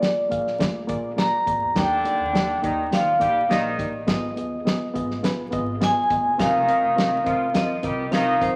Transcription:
Already playing: vibraphone D5
0.00 reed electric piano A#3 F4 G#4 D5, snare, closed hi-hat
0.17 muted upright bass stroke
0.29 upright bass A#1, reed electric piano A#3 F4 G#4 F5, kick, closed hi-hat
0.47 snare
0.59 upright bass D2, reed electric piano A#3 F4 G#4 D5, kick, snare, closed hi-hat
0.87 upright bass A#1, reed electric piano A#3 F4 G#4 D5, kick, closed hi-hat
1.17 reed electric piano A#3 F4 G#4 D5, vibraphone A#5, snare, closed hi-hat
1.46 upright bass G#1, reed electric piano A#3 F4 G#4 D5, kick, closed hi-hat
1.62 upright bass E2
1.75 upright bass D#2, horn section D3 D4, reed electric piano A#3 D#4 G4 D5, vibraphone G5, kick, snare, closed hi-hat
2.04 reed electric piano A#3 D#4 G4 D5, closed hi-hat
2.20 upright bass D#2
2.33 reed electric piano A#3 D#4 G4 D5, snare, closed hi-hat
2.62 upright bass D#2, horn section D#3 D#4, reed electric piano A#3 D#4 G4 D5, kick, closed hi-hat
2.91 upright bass D#3, horn section F3 F4, reed electric piano A#3 D#4 G4 D5, vibraphone F5, snare, closed hi-hat
3.19 upright bass A#1, horn section G3 G4, reed electric piano A#3 D#4 G4 D5, kick, closed hi-hat
3.49 upright bass A#1, horn section D#3 D#4, reed electric piano A#3 D#4 G4 D5, vibraphone D#5, snare, closed hi-hat
3.78 reed electric piano A#3 D#4 G4 D5, kick, closed hi-hat
4.07 upright bass G#1, reed electric piano B3 F4 G#4 D#5, kick, snare, closed hi-hat
4.11 vibraphone D#5
4.36 upright bass D#2, reed electric piano B3 F4 G#4 D#5, closed hi-hat
4.65 reed electric piano B3 F4 G#4 D#5, snare, closed hi-hat
4.80 muted upright bass stroke
4.94 upright bass G#1, reed electric piano B3 F4 G#4 D#5, kick, closed hi-hat
5.11 snare
5.23 upright bass B1, reed electric piano B3 F4 G#4 B4, snare, closed hi-hat
5.51 upright bass G#1, reed electric piano B3 F4 G#4 D#5, kick, closed hi-hat
5.81 reed electric piano B3 F4 G#4 D#5, vibraphone G#5, snare, closed hi-hat
6.10 upright bass G1, reed electric piano B3 F4 G#4 D#5, kick, closed hi-hat
6.25 upright bass F#1
6.38 upright bass F1, horn section D#3 D#4, reed electric piano C4 F4 A#4 D#5, vibraphone F5, kick, snare, closed hi-hat
6.68 reed electric piano C4 F4 A#4 D#5, closed hi-hat
6.82 upright bass F1
6.96 reed electric piano C4 F4 A#4 D#5, snare, closed hi-hat
7.24 upright bass F1, horn section F3 F4, reed electric piano C4 F4 A#4 D#5, kick, closed hi-hat
7.53 upright bass F2, horn section F3 F4, reed electric piano C4 F4 A#4 D#5, vibraphone D#5, snare, closed hi-hat
7.83 upright bass C2, horn section G3 G4, reed electric piano C4 F4 A#4 D#5, kick, closed hi-hat
8.11 upright bass C2, horn section D#3 D#4, reed electric piano C4 F4 A#4 D#5, vibraphone F5, snare, closed hi-hat
8.40 upright bass B1, reed electric piano C4 F4 A#4 D#5, vibraphone C5, kick, closed hi-hat

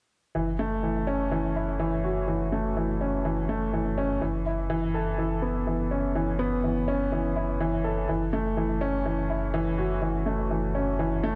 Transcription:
0.35 sub bass F#1, upright piano E3
0.59 upright piano A3
0.83 upright piano E3
1.07 upright piano C#4
1.31 upright piano E3
1.56 upright piano E4
1.79 upright piano E3
2.04 upright piano F#4
2.28 upright piano E3
2.52 upright piano A3
2.77 upright piano E3
3.01 upright piano C#4
3.25 upright piano E3
3.49 upright piano A3
3.73 upright piano E3
3.98 upright piano C#4
4.21 sub bass F#1, upright piano E3
4.46 upright piano E4
4.70 upright piano E3
4.94 upright piano A4
5.18 upright piano E3
5.42 upright piano B3
5.67 upright piano E3
5.91 upright piano C#4
6.15 upright piano E3
6.39 upright piano B3
6.64 upright piano E3
6.88 upright piano C#4
7.12 upright piano E3
7.36 upright piano E4
7.60 upright piano E3
7.84 upright piano A4
8.09 sub bass F#1, upright piano E3
8.33 upright piano A3
8.57 upright piano E3
8.81 upright piano C#4
9.06 upright piano E3
9.30 upright piano E4
9.54 upright piano E3
9.78 upright piano F#4
10.02 upright piano E3
10.26 upright piano A3
10.50 upright piano E3
10.75 upright piano C#4
10.99 upright piano E3
11.23 upright piano A3

